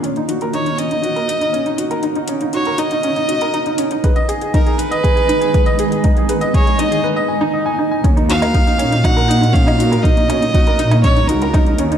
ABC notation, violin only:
X:1
M:4/4
L:1/8
Q:1/4=120
K:Ebm
V:1 name="Violin"
z2 d e4- e | z2 d e4- e | z2 B c4- c | z2 d e z4 |
z f3 g2 f2 | e4 d B2 z |]